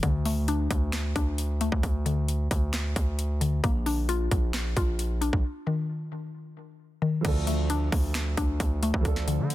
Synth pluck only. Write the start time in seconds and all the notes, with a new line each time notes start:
0.03 D3
0.26 A3
0.48 D4
1.16 D4
1.61 A3
2.06 D3
3.41 D3
3.64 A#3
3.86 D4
4.09 F4
4.77 F4
5.21 D4
5.67 D#3
7.02 D#3
7.25 D3
7.47 A3
7.70 D4
8.37 D4
8.83 A3
9.28 D3